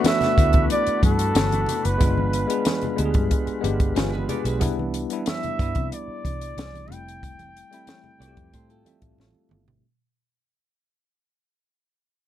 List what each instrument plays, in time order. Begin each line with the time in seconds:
Already playing: tine electric piano A3 B3 D4 F#4, tonewheel organ B3 D4 F#4 B4
0.04 flugelhorn E5, snare, closed hi-hat, muted conga, high conga
0.21 snare, closed hi-hat, low conga
0.37 fingered electric bass D2, tine electric piano A3 B3 D4 E4, kick, closed hi-hat, muted conga
0.53 kick, closed hi-hat, high conga
0.70 flugelhorn D5, closed hi-hat, muted conga
0.87 muted fingered electric bass stroke, closed hi-hat
1.03 fingered electric bass G2, flugelhorn A4, kick, closed hi-hat, muted conga, high conga
1.19 closed hi-hat
1.35 fingered electric bass G1, snare, closed hi-hat, high conga
1.52 closed hi-hat, high conga
1.66 closed hi-hat, muted conga, low conga
1.85 fingered electric bass F#1, flugelhorn B4, closed hi-hat
1.98 fingered electric bass G1, tine electric piano G#3 B3 D4 F4, tonewheel organ G#3 F4, kick, closed hi-hat, low conga
2.18 high conga
2.33 closed hi-hat, muted conga
2.47 tine electric piano G#3 B3 D4 G#4, closed hi-hat
2.65 snare, closed hi-hat, muted conga, high conga
2.81 closed hi-hat, low conga
2.96 fingered electric bass D2, tine electric piano G#3 B3 D4 G4, closed hi-hat
3.05 tine electric piano G#4
3.14 fingered electric bass G2, kick, closed hi-hat, high conga
3.31 kick, closed hi-hat
3.47 muted fingered electric bass stroke, closed hi-hat
3.61 fingered electric bass G1, tine electric piano G#3 B3 D4 G4, closed hi-hat
3.65 muted conga, high conga
3.80 kick, closed hi-hat
3.96 fingered electric bass G1, tine electric piano F4 B4, clean electric guitar F4 G#4, snare, closed hi-hat, muted conga, high conga
4.13 clean electric guitar G#4 B4, high conga
4.29 tine electric piano D4 G#4, clean electric guitar B4 D5, closed hi-hat, low conga
4.45 fingered electric bass B1, tine electric piano D4 G4, clean electric guitar G#4 B4, closed hi-hat
4.59 fingered electric bass C2, tine electric piano G3 B3 D4 E4, kick, closed hi-hat, muted conga, low conga
4.79 high conga
4.94 closed hi-hat, muted conga
5.10 tine electric piano G3 B3 D4 E4, closed hi-hat
5.26 flugelhorn E5, snare, closed hi-hat, muted conga, high conga
5.43 closed hi-hat, low conga
5.58 fingered electric bass G2, tine electric piano G3 B3 D4 E4, kick, closed hi-hat, muted conga
5.75 fingered electric bass C3, kick, closed hi-hat, high conga
5.92 flugelhorn D5, closed hi-hat
6.08 muted fingered electric bass stroke
6.25 fingered electric bass C2, kick, closed hi-hat, muted conga, high conga
6.41 closed hi-hat
6.57 fingered electric bass C2, snare, closed hi-hat, high conga
6.74 closed hi-hat, high conga
6.88 fingered electric bass F1, tine electric piano G3 A3 C4 E4, muted conga, low conga
6.92 flugelhorn G5, closed hi-hat
7.08 closed hi-hat
7.23 kick, closed hi-hat, low conga
7.39 closed hi-hat, high conga
7.57 closed hi-hat
7.71 tine electric piano G3 A3 C4 E4, closed hi-hat
7.87 snare, closed hi-hat, high conga
8.04 low conga
8.19 fingered electric bass C2, tine electric piano G3 A3 C4 F4, clean electric guitar B4 D5, closed hi-hat
8.28 tine electric piano G4
8.37 fingered electric bass F2, kick, closed hi-hat, high conga
8.53 fingered electric bass A2, clean electric guitar A4 C5, kick, closed hi-hat, muted conga
8.70 clean electric guitar F4 A4, closed hi-hat
8.85 tine electric piano G3 A3 C4 E5, muted fingered electric bass stroke, closed hi-hat, high conga
9.02 fingered electric bass A1, kick, closed hi-hat
9.18 fingered electric bass A1, snare, muted conga, high conga
9.35 high conga
9.49 fingered electric bass G1, mid tom, low conga
9.68 floor tom